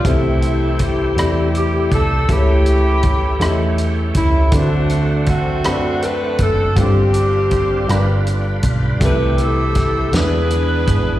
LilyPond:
<<
  \new Staff \with { instrumentName = "Saxophone section" } { \time 6/8 \key c \major \tempo 4. = 54 << { e'4 g'4 g'8 a'8 | g'2 r8 e'8 | d'4 fis'4 b'8 a'8 | g'2 r4 |
b'8 a'4 b'4. | } \\ { <g a>4 e'4. r8 | e'2 r4 | <fis a>4 <a c'>4. r8 | <c' d'>2 r4 |
<e' g'>8 e'4 <d' gis'>4. | } >> }
  \new Staff \with { instrumentName = "Grand piano" } { \time 6/8 \key c \major <a c' e' g' c''>4 r8 <a c' e' g' d''>4 r8 | <a cis' e' g' b' cis''>4 r8 <a cis' e' g' ees'' e''>4 r8 | <a c' d' fis' b' c''>4 r8 <a c' d' fis' b' d''>4 r8 | <g c' d' f' b' c''>4 r8 <g d' f' bes' b'>4 r8 |
<g a c' e' a'>4 r8 <gis b d' e' b'>4 r8 | }
  \new Staff \with { instrumentName = "Grand piano" } { \clef bass \time 6/8 \key c \major c4. r4. | cis4. r4. | d4. r4. | g,4. g,4. |
c4. e4. | }
  \new Staff \with { instrumentName = "Tonewheel organ" } { \time 6/8 \key c \major <e a c' g'>2. | <e a cis' f' g'>2. | <d a c' fis'>2. | <d g c' f'>4. <d g f' b'>4. |
<e a c' g'>4. <e b d' f' gis'>4. | }
  \new Staff \with { instrumentName = "Fingered electric bass" } { \clef bass \time 6/8 \key c \major c,4. e,4 c,8 | cis,4. e,4 cis,8 | d,4. fis,4 fis,,8 | g,,4. g,,4 b,,8 |
c,4. e,4 gis,,8 | }
  \new DrumStaff \with { instrumentName = "Drums" } \drummode { \time 6/8 <hh bd>8 hh8 <hh bd ss>8 <hh ss>8 hh8 <hh bd>8 | <hh bd>8 hh8 <hh bd>8 <hh ss>8 hh8 <hh bd>8 | <hh bd>8 hh8 <hh bd ss>8 <hh ss>8 hh8 <hh bd>8 | <hh bd>8 hh8 <hh bd>8 <hh ss>8 hh8 <hh bd>8 |
<hh bd>8 hh8 <hh bd sn>8 <hh sn>8 hh8 <hh bd>8 | }
>>